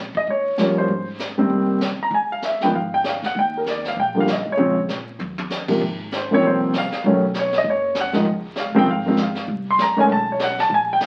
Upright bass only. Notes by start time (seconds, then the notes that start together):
Already playing: A#1
0.15 muted upright bass stroke
0.27 D#2
0.58 D#2
0.88 G#1
1.50 C2
1.99 muted upright bass stroke
2.11 C#2
2.73 G#1
3.22 D2
3.35 D#2
3.97 A#1
4.46 F2
4.58 A#1
4.88 A#2
5.19 D#2
5.81 G#1
6.43 C2
6.93 muted upright bass stroke
7.04 B1
7.64 F#1
8.15 G#2
8.25 C#2
8.75 C2
8.86 G#1
9.48 C2
9.79 F#2
10.09 B1
10.70 A#1
11.03 A1